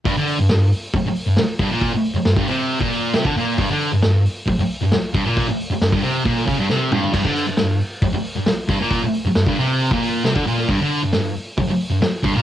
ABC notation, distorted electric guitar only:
X:1
M:4/4
L:1/16
Q:1/4=135
K:Gm
V:1 name="Distorted electric guitar" clef=bass
G,, D,2 G,, G,,2 z4 z G,, z2 G,, B,,- | B,, z3 G,, G,, C,3 B,,3 C, D, B,,2 | G,, D,2 G,, G,,2 z4 z G,, z2 G,, B,,- | B,, z3 G,, G,, C,2 B,,2 ^C, G,, =C,2 G,,2 |
G,, D,2 G,, G,,2 z4 z G,, z2 G,, B,,- | B,, z3 G,, G,, C,3 B,,3 C, D, B,,2 | G,, D,2 G,, G,,2 z4 z G,, z2 G,, B,, |]